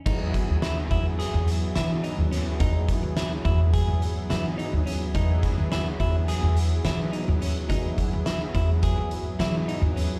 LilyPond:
<<
  \new Staff \with { instrumentName = "Clean electric guitar" } { \time 9/8 \key e \major \tempo 4. = 71 dis'4 e'8 e'8 gis'4 e'8 dis'8 cis'8 | dis'4 e'8 e'8 gis'4 e'8 dis'8 cis'8 | dis'4 e'8 e'8 gis'4 e'8 dis'8 cis'8 | dis'4 e'8 e'8 gis'4 e'8 dis'8 cis'8 | }
  \new Staff \with { instrumentName = "Analog synth pad" } { \time 9/8 \key e \major <fis b e' gis'>1~ <fis b e' gis'>8~ | <fis b e' gis'>1~ <fis b e' gis'>8 | <fis b e' gis'>1~ <fis b e' gis'>8~ | <fis b e' gis'>1~ <fis b e' gis'>8 | }
  \new Staff \with { instrumentName = "Upright bass" } { \clef bass \time 9/8 \key e \major e,8 r16 dis,8 r16 e,8. e,8. e8 r16 dis,8 r16 | e,8 r16 dis,8 r16 e,8. e,8. e8 r16 dis,8 r16 | e,8 r16 dis,8 r16 e,8. e,8. e8 r16 dis,8 r16 | e,8 r16 dis,8 r16 e,8. e,8. e8 r16 dis,8 r16 | }
  \new DrumStaff \with { instrumentName = "Drums" } \drummode { \time 9/8 <cymc bd>8 <hh bd>8 <hh sn>8 <hh bd>8 <hh sn>8 hh8 <hh sn>8 hh8 <hh sn>8 | <hh bd>8 <hh bd>8 <hh sn>8 <hh bd>8 <hh bd>8 hh8 <hh sn>8 hh8 hh8 | <hh bd>8 <hh bd sn>8 <hh sn>8 <hh bd>8 <hh sn>8 hh8 <hh sn>8 hh8 hh8 | <hh bd>8 <hh bd>8 <hh sn>8 <hh bd>8 <hh bd>8 hh8 <hh sn>8 hh8 hh8 | }
>>